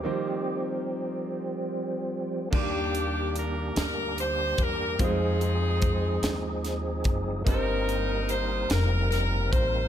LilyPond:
<<
  \new Staff \with { instrumentName = "Saxophone section" } { \time 6/8 \key ees \major \tempo 4. = 49 << { r2. | g'4 bes'8 bes'8 c''8 bes'8 | aes'2 r4 | bes'4 c''8 bes'8 bes'8 c''8 | } \\ { r2. | <bes d'>4. r4. | <c' ees'>2 r4 | ees'4. r4. | } >> }
  \new Staff \with { instrumentName = "Grand piano" } { \time 6/8 \key ees \major <bes c' ees' g' c''>2. | <bes d' g' d''>2. | <g aes c' ees' f' c''>2. | <bes c' ees' g' ces'' c''>2. | }
  \new Staff \with { instrumentName = "Grand piano" } { \clef bass \time 6/8 \key ees \major ees4. r4. | ees4. r4. | r2. | g,4. r4. | }
  \new Staff \with { instrumentName = "Tonewheel organ" } { \time 6/8 \key ees \major g'8. r2 r16 | <g bes d' f' g'>2. | <f aes c' ees' aes'>2. | <g bes c' ees' bes'>2. | }
  \new Staff \with { instrumentName = "Tonewheel organ" } { \clef bass \time 6/8 \key ees \major <f g c'>2. | r2. | r2. | r2. | }
  \new Staff \with { instrumentName = "Upright bass" } { \clef bass \time 6/8 \key ees \major r2. | ees,4. d,4 fes,8 | f,4. ees,4 ges,,8 | g,,4. f,,4 a,,8 | }
  \new DrumStaff \with { instrumentName = "Drums" } \drummode { \time 6/8 r4. r4. | <cymc bd>8 hh8 hh8 <hh sn>8 hh8 <hh bd>8 | <hh bd>8 hh8 <hh bd>8 <hh sn>8 <hh sn>8 <hh bd>8 | <hh bd>8 hh8 hh8 <hh sn>8 <hh sn>8 <hh bd>8 | }
>>